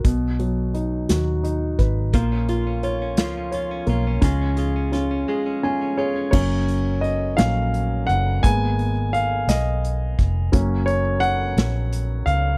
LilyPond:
<<
  \new Staff \with { instrumentName = "Grand piano" } { \time 6/8 \key fis \major \tempo 4. = 57 << { r2. | r2. | r2 gis''8 cis''8 | cis''4 dis''8 eis''4 fis''8 |
gis''4 eis''8 dis''4 r8 | r8 cis''8 fis''4. eis''8 | } \\ { b,8 fis8 dis'8 fis'8 dis'8 b'8 | ais8 eis'8 cis''8 eis'8 cis''8 ais8 | cis'8 gis'8 cis'8 gis'8 cis'8 gis'8 | <fis ais cis'>4. <fis ais cis'>8 r4 |
<gis ais b>8 r2 r8 | <fis ais cis'>8 r2 r8 | } >> }
  \new Staff \with { instrumentName = "Clean electric guitar" } { \time 6/8 \key fis \major r2. | <eis eis'>16 cis'16 eis'16 cis'16 eis'16 cis'16 <eis eis'>16 cis'16 eis'16 cis'16 eis'16 cis'16 | <gis eis'>16 cis'16 eis'16 cis'16 eis'16 cis'16 <gis eis'>16 cis'16 eis'16 cis'16 eis'16 cis'16 | r2. |
r2. | r2. | }
  \new Staff \with { instrumentName = "Fingered electric bass" } { \clef bass \time 6/8 \key fis \major b,,4. dis,4 gis,,8 | ais,,4. cis,4 b,,8 | cis,4. r4. | fis,,4. ais,,4 fis,,8 |
gis,,4. b,,4 eis,,8 | fis,,4. ais,,4 cis,8 | }
  \new DrumStaff \with { instrumentName = "Drums" } \drummode { \time 6/8 <hh bd>8 hh8 hh8 <hh sn>8 hh8 <hh bd>8 | <hh bd>8 hh8 hh8 <hh sn>8 hh8 hh8 | <hh bd>8 hh8 <hh sn>8 r4. | <cymc bd>8 hh8 hh8 <hh sn>8 hh8 hh8 |
<hh bd>8 hh8 hh8 <hh sn>8 hh8 <hh bd>8 | <hh bd>8 hh8 hh8 <hh sn>8 hh8 hh8 | }
>>